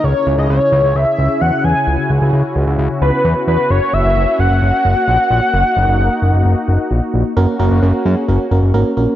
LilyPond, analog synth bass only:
\new Staff \with { instrumentName = "Analog synth bass" } { \clef bass \time 4/4 \key cis \dorian \tempo 4 = 131 cis,16 r16 cis,16 cis,16 cis,16 r16 cis,16 cis,16 cis,16 r16 cis,16 r16 e,16 r16 e,16 r16 | cis,16 r16 cis,16 cis,16 cis,16 r16 cis,16 cis,16 cis,16 r16 cis,16 r16 e,16 r16 e,16 r16 | fis,,16 r16 fis,,16 fis,,16 fis,,16 r16 fis,,16 fis,,16 fis,,16 r16 fis,,16 r16 ais,,16 r16 ais,,16 r16 | fis,,16 r16 fis,,16 fis,,16 fis,,16 r16 fis,,16 fis,,16 fis,,16 r16 fis,,16 r16 ais,,16 r16 ais,,16 r16 |
fis,,16 r16 fis,,16 fis,,16 fis,,16 r16 fis,16 r16 fis,,16 r16 fis,,16 fis,,16 gis,,16 r16 ais,,16 r16 | }